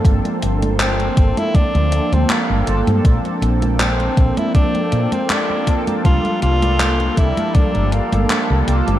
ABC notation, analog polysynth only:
X:1
M:4/4
L:1/8
Q:"Swing 16ths" 1/4=80
K:Bb
V:1 name="Analog polysynth"
[F,B,CDA]4- [F,B,CDA] z2 [F,B,CDA] | [F,B,CDA]4- [F,B,CDA] z2 [F,B,CDA] | [F,G,B,DA]4- [F,G,B,DA] z2 [G,B,DFA] |]